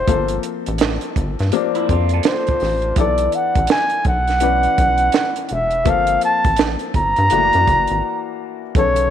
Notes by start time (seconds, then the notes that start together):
Already playing: C5
0.07 G1 F3 A#3 C4 A4, kick, closed hi-hat
0.28 closed hi-hat
0.43 closed hi-hat
0.66 A1, closed hi-hat
0.78 snare, closed hi-hat
1.01 closed hi-hat
1.16 G1, kick, closed hi-hat
1.39 G2, snare, closed hi-hat
1.52 F3 A#3 C4 D4, closed hi-hat
1.75 C4 E4, closed hi-hat
1.89 F2 D4 F4, kick, closed hi-hat
2.09 closed hi-hat
2.14 F4 A4
2.23 C5, snare, closed hi-hat
2.47 kick, closed hi-hat
2.60 A1, snare, open hi-hat
2.82 closed hi-hat
2.96 B1 E3 B3 D4 A4 D5, kick, closed hi-hat
3.18 closed hi-hat
3.32 F#5, closed hi-hat
3.55 A1, kick, closed hi-hat
3.67 snare, closed hi-hat
3.71 G#5
3.90 closed hi-hat
4.05 B1 F#5, kick, closed hi-hat
4.27 snare, closed hi-hat
4.40 E3 C#4 D4 B4, closed hi-hat
4.63 closed hi-hat
4.78 B1, kick, closed hi-hat
4.98 closed hi-hat
5.12 snare, closed hi-hat
5.36 closed hi-hat
5.48 E1 F#5, closed hi-hat
5.53 E5
5.71 closed hi-hat
5.85 G1 F3 A#3 C4 A4, kick, closed hi-hat
5.90 F5
6.07 closed hi-hat
6.21 A5, closed hi-hat
6.44 A1, kick, closed hi-hat
6.56 snare, closed hi-hat
6.79 closed hi-hat
6.94 G1 A#5, kick, closed hi-hat
7.16 G2, closed hi-hat
7.30 F#1 E3 A3 D4 F#4, closed hi-hat
7.38 A#3
7.53 F#2, closed hi-hat
7.67 F#1, kick, closed hi-hat
7.87 G#1, closed hi-hat
8.75 B1 C#3 D3 B3 A4 C#5, kick, closed hi-hat
8.96 closed hi-hat